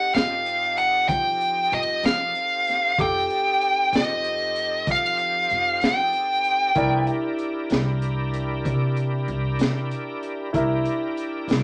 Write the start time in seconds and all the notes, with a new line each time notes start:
Already playing: C4 D#4 G4 A4 D#5 F#5
0.14 F2 F5, snare, closed hi-hat
0.46 closed hi-hat
0.77 F#5, closed hi-hat
1.09 F3 G5, kick, closed hi-hat
1.41 closed hi-hat
1.72 F2 D#5, closed hi-hat
2.03 F3 F5, snare, closed hi-hat
2.35 closed hi-hat
2.67 snare, closed hi-hat
2.97 F2 C4 D#4 G4 A4 D6, kick, closed hi-hat
3.01 G5
3.30 closed hi-hat
3.61 closed hi-hat
3.93 F2 D#5, snare, closed hi-hat
4.24 closed hi-hat
4.56 closed hi-hat
4.87 F3, kick, closed hi-hat
4.91 F5
5.18 closed hi-hat
5.50 F2, closed hi-hat
5.81 F3, snare, closed hi-hat
5.87 G5
6.13 closed hi-hat
6.44 closed hi-hat
6.75 C2 F3 B3 D4 E4 G#4 A#4 D5, kick, closed hi-hat
7.07 D4 E4 G4 A#4, closed hi-hat
7.39 closed hi-hat
7.70 C2, snare, closed hi-hat
8.02 closed hi-hat
8.34 closed hi-hat
8.65 C3, kick, closed hi-hat
8.97 closed hi-hat
9.28 C2, closed hi-hat
9.59 C3, snare, closed hi-hat
9.91 closed hi-hat
10.23 closed hi-hat
10.53 C2 D4 E4 G4 A#4 E5, kick, closed hi-hat
10.85 closed hi-hat
11.17 closed hi-hat
11.48 C2, snare, closed hi-hat